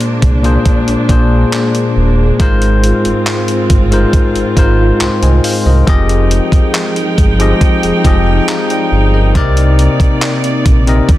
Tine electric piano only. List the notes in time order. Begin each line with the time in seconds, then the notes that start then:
Already playing: A#2 A#3 D4 G#4 C5
0.43 A#2 A#3 D4 G#4 C5
1.08 A#2 A#3 D4 G#4 C5
2.39 G#2 G#3 F4 A#4 C5
3.91 G#2 G#3 F4 A#4 C5
4.56 G#2 G#3 F4 A#4 C5
5.01 G5 C6
5.23 D#5 G#5
5.44 C5 F5
5.66 A#4 D#5
5.87 F3 C4 G4 G#4 D#5
7.39 F3 C4 G4 G#4 D#5
8.04 F3 C4 G4 G#4 D#5
8.49 A#5
8.71 D5 G5
9.14 A#4 D#5
9.35 C3 C4 D#4 A#4 D5
10.87 C3 C4 D#4 A#4 D#5